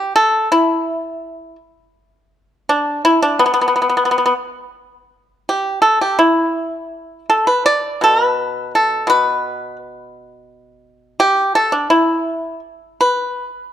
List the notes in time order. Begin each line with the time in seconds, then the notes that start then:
Already playing: G4
0.16 A4
0.52 E4
2.69 D4
3.05 E4
3.22 D4
3.39 B3
3.46 B3
3.54 B3
3.61 B3
3.68 B3
3.76 B3
3.82 B3
3.89 B3
3.97 B3
4.05 B3
4.11 B3
4.18 B3
4.26 B3
5.49 G4
5.82 A4
6.01 G4
6.19 E4
7.30 A4
7.47 B4
7.66 D5
8.01 B2 A4
8.24 B4
8.75 A4
9.07 B2 B4
11.20 G4
11.55 A4
11.72 D4
11.90 E4
13.01 B4